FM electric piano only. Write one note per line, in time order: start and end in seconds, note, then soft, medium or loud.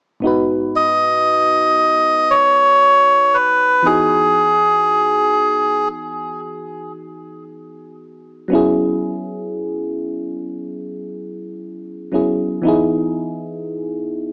0.20 3.80 G#2 medium
0.20 3.81 B3 medium
0.20 3.81 D#4 medium
0.25 3.82 F#4 medium
0.25 3.83 B4 medium
3.83 7.94 E3 medium
3.83 7.94 B3 medium
3.83 7.95 D#4 medium
3.87 7.96 F#4 medium
3.87 7.97 G#4 medium
8.48 12.07 F#3 medium
8.48 12.08 B3 medium
8.48 12.09 C#4 medium
8.53 12.10 E4 medium
8.53 12.11 G#4 medium
12.12 12.64 F#3 medium
12.12 12.62 B3 medium
12.12 12.65 C#4 medium
12.12 12.65 E4 medium
12.12 12.66 G#4 medium
12.62 14.33 E3 medium
12.62 14.33 B3 medium
12.62 14.33 D#4 medium
12.67 14.33 E4 medium
12.67 14.33 G#4 medium